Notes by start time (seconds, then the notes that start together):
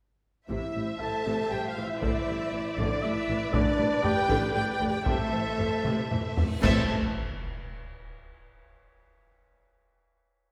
0.49 A1 A2 C3 E4 C5 E5, taiko
0.75 A1 A2 G3
1.00 A1 A2 E3 A4 A5
1.26 A1 A2 C3
1.50 A1 A2 G3 G4 G5
1.68 F4 F5
1.77 A1 A2 E3
1.85 E4 E5
2.02 A1 A2 D3 D5, taiko
2.28 A1 A2 G3
2.53 A1 A2 E3
2.78 A1 A2 D3 D4 D5, taiko
3.03 A1 A2 G3 E4 B4 E5
3.28 A1 A2 E3
3.53 A1 A2 D3 D4 D5, taiko
3.78 A1 A2 G3
4.03 A1 A2 D3 G4 G5, taiko low-mid
4.29 A1 A2 D3, taiko
4.54 A1 A2 G3 G4 G5
4.72 G4 G5
4.80 A1 A2 D3, taiko low-mid
4.89 G4 G5
5.06 A1 A2 C3 A3 A4 C5 E5, taiko, reverse cymbal
5.32 A1 A2 E3
5.58 A1 A2 C3, taiko low-mid
5.84 A1 A2 C3, taiko mid
6.11 A1 A2 E3, taiko low-mid
6.37 A1 A2 C3, taiko low
6.62 A1 A2 A3 C4 A4 C5 E5 A5, concert bass drum, taiko, crash, sub drop